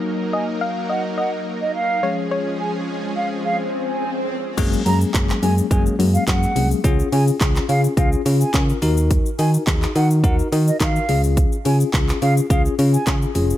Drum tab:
CC |----------------|----------------|x---------------|----------------|
HH |----------------|----------------|x-o-x-o-x-o-x-o-|x-o-x-o-x-o-x-o-|
SH |----------------|----------------|xxxxxxxxxxxxxxxx|xxxxxxxxxxxxxxxx|
CP |----------------|----------------|----xx------x---|----xx------x---|
BD |----------------|----------------|o---o---o---o---|o---o---o---o---|

CC |----------------|----------------|
HH |x-o-x-o-x-o-x-o-|x-o-x-o-x-o-x-o-|
SH |xxxxxxxxxxxxxxxx|xxxxxxxxxxxxxxxx|
CP |----xx------x---|----xx------x---|
BD |o---o---o---o---|o---o---o---o---|